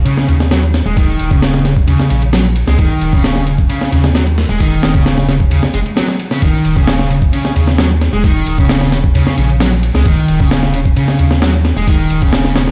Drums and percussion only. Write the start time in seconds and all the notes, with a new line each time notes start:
0.06 ride
0.17 snare
0.28 ride
0.40 snare
0.51 snare, ride
0.63 ride
0.74 snare, ride
0.97 kick, ride
1.19 ride
1.31 kick
1.42 snare, ride
1.54 snare
1.65 snare, ride
1.77 kick
1.88 ride
2.00 snare
2.10 ride
2.22 ride
2.33 snare, open hi-hat
2.56 ride
2.67 snare
2.78 kick, ride
3.01 ride
3.13 kick
3.24 snare, ride
3.36 snare
3.47 ride
3.58 kick
3.70 ride
3.81 snare
3.92 ride
4.04 snare
4.15 snare, ride
4.27 ride
4.38 snare, ride
4.60 kick, ride
4.83 snare, ride
4.95 kick
5.06 snare, ride
5.18 snare
5.29 snare, ride
5.40 kick
5.51 ride
5.63 snare
5.74 ride
5.86 ride
5.97 snare, ride
6.08 snare
6.19 ride
6.31 snare
6.42 kick, ride
6.65 ride
6.76 kick
6.87 snare, ride
6.99 snare
7.10 ride
7.22 kick
7.33 ride
7.45 snare
7.56 ride
7.67 snare
7.78 snare, ride
7.90 ride
8.01 snare, ride
8.24 kick, ride
8.47 ride
8.58 kick
8.69 snare, ride
8.81 snare
8.92 snare, ride
9.04 kick
9.15 ride
9.27 snare
9.38 ride
9.49 ride
9.60 snare, open hi-hat
9.83 ride
9.95 snare
10.06 kick, ride
10.28 ride
10.40 kick
10.51 snare, ride
10.63 snare
10.74 ride
10.86 kick
10.96 ride
11.08 snare
11.19 ride
11.31 snare
11.42 snare, ride
11.54 ride
11.65 snare, ride
11.88 kick, ride
12.10 ride
12.22 kick
12.33 snare, ride
12.45 snare
12.56 snare, ride
12.68 snare